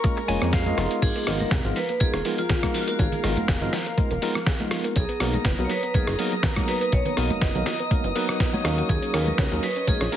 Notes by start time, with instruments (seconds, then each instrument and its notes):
Already playing: vibraphone A#4, string section A#4 A#5 C#6
0.04 tine electric piano G#3 A#3 C#4 F4 A#4, muted clean electric guitar stroke, kick, closed hi-hat, swell, high conga, shaker
0.17 muted clean electric guitar stroke, closed hi-hat
0.28 analog synth bass F1, tine electric piano G#3 A#3 C#4 F4 C#5, clean electric guitar G#5, muted clean electric guitar stroke, open hi-hat, shaker
0.42 analog synth bass F2, cross-stick, closed hi-hat, shaker
0.53 clean electric guitar F5, kick, snare, closed hi-hat, shaker
0.66 tine electric piano G#3 A#3 C#4 F4 D#5, closed hi-hat, high conga, shaker
0.77 analog synth bass F1, tine electric piano G#3 B3 D#4 F4 A#4, cross-stick, open hi-hat, shaker
0.91 closed hi-hat, shaker
1.02 analog synth bass G#1, synth arpeggio sound F3, vibraphone G#4, string section A#4 F5, kick, closed hi-hat, crash, shaker
1.16 synth arpeggio sound A#3, closed hi-hat, shaker
1.26 analog synth bass G#1, synth arpeggio sound F3, tine electric piano G#3 B3 D#4 F4 A#4, cross-stick, open hi-hat, shaker
1.40 synth arpeggio sound F3, vibraphone A#4, closed hi-hat, high conga, shaker
1.51 analog synth bass F1, synth arpeggio sound G#4, kick, snare, closed hi-hat, shaker
1.64 analog synth bass G#1, synth arpeggio sound F3, tine electric piano G#3 B3 D#4 F4 A#4, closed hi-hat, shaker
1.76 synth arpeggio sound F3, vibraphone B4, open hi-hat, shaker
1.89 synth arpeggio sound A#3, closed hi-hat, shaker
2.00 analog synth bass D#1, synth arpeggio sound F3, tine electric piano G#3 B3 D#4 F4 A#4, vibraphone G#4, kick, closed hi-hat, high conga, shaker
2.13 analog synth bass D#1, synth arpeggio sound A#3, cross-stick, closed hi-hat
2.25 synth arpeggio sound F3, tine electric piano G#3 B3 D#4 F4 A#4, open hi-hat, shaker
2.38 synth arpeggio sound F3, vibraphone F4, closed hi-hat, shaker
2.49 synth arpeggio sound G#4, kick, snare, closed hi-hat, low conga, shaker
2.62 synth arpeggio sound F3, tine electric piano G#3 B3 D#4 F4 A#4, kick, cross-stick, closed hi-hat, high conga, shaker
2.74 synth arpeggio sound F3, vibraphone F#4, open hi-hat, shaker
2.81 vibraphone F4
2.88 synth arpeggio sound A#3, vibraphone F#4, closed hi-hat, shaker
2.99 analog synth bass G#1, synth arpeggio sound F3, vibraphone G#4, kick, closed hi-hat, shaker
3.12 synth arpeggio sound A#3, closed hi-hat, low conga, shaker
3.23 analog synth bass G#1, synth arpeggio sound F3, tine electric piano G#3 B3 D#4 F4 A#4, vibraphone A#4, cross-stick, open hi-hat, shaker
3.37 analog synth bass F1, synth arpeggio sound F3, closed hi-hat, high conga, shaker
3.48 analog synth bass F1, synth arpeggio sound G#4, kick, snare, closed hi-hat, shaker
3.61 analog synth bass G#1, synth arpeggio sound F3, tine electric piano G#3 B3 D#4 F4 A#4, closed hi-hat, low conga, shaker
3.73 synth arpeggio sound F3, snare, open hi-hat, shaker
3.86 synth arpeggio sound A#3, closed hi-hat, shaker
3.97 synth arpeggio sound F3, tine electric piano G#3 B3 D#4 F4 A#4, kick, closed hi-hat, high conga, shaker
4.11 analog synth bass D#1, synth arpeggio sound A#3, closed hi-hat
4.22 synth arpeggio sound F3, tine electric piano G#3 B3 D#4 F4 A#4, open hi-hat, shaker
4.35 synth arpeggio sound F3, cross-stick, closed hi-hat, shaker
4.46 synth arpeggio sound G#4, kick, snare, closed hi-hat, shaker
4.60 synth arpeggio sound F3, tine electric piano G#3 B3 D#4 F4 A#4, closed hi-hat, high conga, shaker
4.71 synth arpeggio sound F3, cross-stick, open hi-hat, shaker
4.84 synth arpeggio sound A#3, closed hi-hat, shaker
4.96 analog synth bass B1, synth arpeggio sound F#3, vibraphone G#4, string section A#5 D#6, kick, closed hi-hat, shaker
5.09 synth arpeggio sound B3, closed hi-hat, shaker
5.20 analog synth bass B1, tine electric piano F#3 A#3 B3 D#4 A#4, synth arpeggio sound F#3, cross-stick, open hi-hat, shaker
5.33 synth arpeggio sound F#3, vibraphone A#4, closed hi-hat, high conga, shaker
5.45 analog synth bass F#1, synth arpeggio sound B4, kick, snare, closed hi-hat, shaker
5.58 analog synth bass B1, tine electric piano F#3 A#3 B3 D#4 A#4, synth arpeggio sound F#3, closed hi-hat, shaker
5.65 vibraphone C#5
5.70 synth arpeggio sound F#3, vibraphone B4, open hi-hat, shaker
5.83 synth arpeggio sound B3, closed hi-hat, shaker
5.94 analog synth bass F#1, tine electric piano F#3 A#3 B3 D#4 A#4, synth arpeggio sound F#3, vibraphone G#4, kick, closed hi-hat, high conga, shaker
6.07 analog synth bass F#1, synth arpeggio sound B3, cross-stick, closed hi-hat
6.18 tine electric piano F#3 A#3 B3 D#4 A#4, synth arpeggio sound F#3, open hi-hat, shaker
6.32 synth arpeggio sound F#3, vibraphone A#4, closed hi-hat, shaker
6.43 synth arpeggio sound B4, kick, snare, closed hi-hat, low conga, shaker
6.56 tine electric piano F#3 A#3 B3 D#4 A#4, synth arpeggio sound F#3, kick, cross-stick, closed hi-hat, high conga, shaker
6.68 synth arpeggio sound F#3, vibraphone B4, open hi-hat, shaker
6.81 synth arpeggio sound B3, closed hi-hat, shaker
6.92 analog synth bass B1, synth arpeggio sound F#3, vibraphone C#5, kick, closed hi-hat, shaker
7.05 synth arpeggio sound B3, closed hi-hat, low conga, shaker
7.17 analog synth bass B1, tine electric piano F#3 A#3 B3 D#4 A#4, synth arpeggio sound F#3, vibraphone D#5, cross-stick, open hi-hat, shaker
7.30 analog synth bass F#1, synth arpeggio sound F#3, closed hi-hat, high conga, shaker
7.42 analog synth bass F#1, synth arpeggio sound B4, kick, snare, closed hi-hat, shaker
7.55 analog synth bass B1, tine electric piano F#3 A#3 B3 D#4 A#4, synth arpeggio sound F#3, closed hi-hat, low conga, shaker
7.66 synth arpeggio sound F#3, snare, open hi-hat, shaker
7.80 synth arpeggio sound B3, closed hi-hat, shaker
7.91 tine electric piano F#3 A#3 B3 D#4 A#4, synth arpeggio sound F#3, kick, closed hi-hat, high conga, shaker
8.04 analog synth bass F#1, synth arpeggio sound B3, closed hi-hat
8.15 tine electric piano F#3 B3 D#4 A#4 B4, synth arpeggio sound A#3, open hi-hat, shaker
8.29 synth arpeggio sound B3, cross-stick, closed hi-hat, shaker
8.40 synth arpeggio sound B3, kick, snare, closed hi-hat, shaker
8.53 tine electric piano F#3 A#3 B3 D#4 C#5, synth arpeggio sound F#4, closed hi-hat, high conga, shaker
8.64 analog synth bass D#2, tine electric piano F#3 A#3 C#4 D#4 A#4, synth arpeggio sound A#4, string section C#5 D#5, cross-stick, open hi-hat, shaker
8.78 synth arpeggio sound F#4, closed hi-hat, shaker
8.89 analog synth bass D#2, synth arpeggio sound F#3, vibraphone G#4, kick, closed hi-hat, shaker
9.02 synth arpeggio sound C#4, closed hi-hat, shaker
9.13 analog synth bass D#2, tine electric piano F#3 A#3 C#4 D#4 A#4, synth arpeggio sound F#3, cross-stick, open hi-hat, shaker
9.20 vibraphone B4
9.27 synth arpeggio sound F#3, vibraphone A#4, closed hi-hat, high conga, shaker
9.38 analog synth bass C#2, synth arpeggio sound C#5, kick, snare, closed hi-hat, shaker
9.51 analog synth bass D#2, tine electric piano F#3 A#3 C#4 D#4 A#4, synth arpeggio sound F#3, closed hi-hat, shaker
9.63 synth arpeggio sound F#3, vibraphone B4, open hi-hat, shaker
9.76 synth arpeggio sound C#4, closed hi-hat, shaker
9.87 analog synth bass A#1, tine electric piano F#3 A#3 C#4 D#4 A#4, synth arpeggio sound F#3, vibraphone G#4, kick, closed hi-hat, high conga, shaker
10.01 analog synth bass A#1, synth arpeggio sound C#4, cross-stick, closed hi-hat
10.12 tine electric piano F#3 A#3 C#4 D#4 A#4, synth arpeggio sound F#3, open hi-hat, shaker